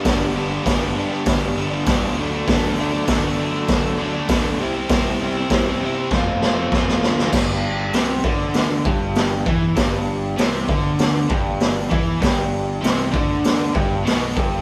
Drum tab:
CC |----------------|----------------|----------------|x---------------|
HH |o---o---o---o---|o---o---o---o---|o---o-----------|----o---o---o---|
SD |o---o---o---o---|o---o---o---o---|o---o---o-o-oooo|o---o---o---o---|
BD |o---o---o---o---|o---o---o---o---|o---o---o---o---|o-----o---o---o-|

CC |----------------|----------------|
HH |o---o---o---o---|o---o---o---o---|
SD |o---o---o---o---|o---o---o---o---|
BD |o-----o---o---o-|o-----o---o---o-|